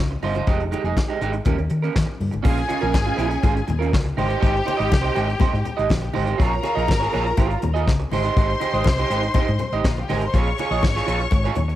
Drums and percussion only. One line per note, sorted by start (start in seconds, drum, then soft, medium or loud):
0.10 closed hi-hat soft
0.22 open hi-hat medium
0.22 high conga medium
0.34 closed hi-hat soft
0.34 high conga medium
0.47 kick loud
0.47 closed hi-hat medium
0.60 closed hi-hat soft
0.72 closed hi-hat medium
0.72 muted conga medium
0.85 closed hi-hat soft
0.97 kick medium
0.97 snare medium
0.97 high conga medium
1.10 closed hi-hat soft
1.21 closed hi-hat medium
1.33 closed hi-hat soft
1.45 kick loud
1.45 closed hi-hat medium
1.45 muted conga medium
1.45 low conga medium
1.58 closed hi-hat soft
1.69 closed hi-hat medium
1.84 closed hi-hat soft
1.96 kick loud
1.96 snare loud
1.96 high conga medium
2.20 open hi-hat medium
2.20 high conga medium
2.32 closed hi-hat soft
2.32 high conga medium
2.44 kick loud
2.44 crash loud
2.57 closed hi-hat soft
2.69 closed hi-hat medium
2.69 muted conga medium
2.82 closed hi-hat soft
2.94 kick loud
2.94 snare medium
2.94 high conga medium
3.07 closed hi-hat medium
3.18 closed hi-hat medium
3.18 muted conga soft
3.31 closed hi-hat medium
3.43 kick loud
3.43 closed hi-hat medium
3.43 muted conga medium
3.57 closed hi-hat soft
3.68 closed hi-hat medium
3.68 low conga medium
3.82 closed hi-hat medium
3.93 kick loud
3.93 snare loud
3.93 high conga medium
4.05 closed hi-hat medium
4.18 open hi-hat medium
4.18 high conga medium
4.30 closed hi-hat soft
4.43 kick loud
4.43 closed hi-hat medium
4.56 closed hi-hat soft
4.68 closed hi-hat medium
4.68 muted conga medium
4.80 closed hi-hat soft
4.92 kick loud
4.92 snare loud
4.92 high conga medium
5.05 closed hi-hat medium
5.16 closed hi-hat medium
5.16 muted conga soft
5.29 closed hi-hat soft
5.40 kick loud
5.40 closed hi-hat medium
5.40 muted conga medium
5.40 low conga loud
5.55 closed hi-hat soft
5.65 closed hi-hat medium
5.65 low conga medium
5.79 closed hi-hat medium
5.89 kick loud
5.89 snare loud
5.89 high conga medium
6.02 closed hi-hat medium
6.14 open hi-hat medium
6.14 high conga medium
6.27 closed hi-hat medium
6.40 kick loud
6.40 closed hi-hat medium
6.53 closed hi-hat soft
6.63 closed hi-hat medium
6.63 muted conga medium
6.78 closed hi-hat soft
6.88 kick loud
6.88 snare loud
6.88 high conga medium
7.02 closed hi-hat medium
7.13 closed hi-hat medium
7.13 muted conga soft
7.26 closed hi-hat soft
7.37 kick loud
7.37 closed hi-hat loud
7.37 muted conga medium
7.50 closed hi-hat soft
7.62 closed hi-hat medium
7.62 low conga medium
7.76 closed hi-hat medium
7.88 kick loud
7.88 snare loud
7.88 high conga medium
7.99 closed hi-hat medium
8.12 open hi-hat medium
8.12 high conga medium
8.24 closed hi-hat soft
8.37 kick loud
8.37 closed hi-hat medium
8.50 closed hi-hat soft
8.61 closed hi-hat medium
8.61 muted conga medium
8.74 closed hi-hat soft
8.84 kick loud
8.84 snare loud
8.84 high conga medium
8.99 closed hi-hat medium
9.11 closed hi-hat medium
9.22 closed hi-hat soft
9.34 kick loud
9.34 closed hi-hat loud
9.34 muted conga medium
9.34 low conga medium
9.48 closed hi-hat soft
9.59 closed hi-hat medium
9.59 low conga medium
9.72 closed hi-hat soft
9.85 kick loud
9.85 snare loud
9.85 high conga medium
9.96 closed hi-hat medium
10.09 open hi-hat medium
10.09 high conga medium
10.21 closed hi-hat medium
10.34 kick loud
10.34 closed hi-hat medium
10.46 closed hi-hat soft
10.58 closed hi-hat medium
10.58 muted conga medium
10.71 closed hi-hat soft
10.83 kick loud
10.83 snare loud
10.83 high conga medium
10.96 snare soft
10.96 closed hi-hat medium
11.08 closed hi-hat medium
11.20 closed hi-hat soft
11.31 kick loud
11.31 closed hi-hat medium
11.31 muted conga medium
11.45 closed hi-hat soft
11.55 closed hi-hat medium
11.55 low conga medium
11.69 closed hi-hat soft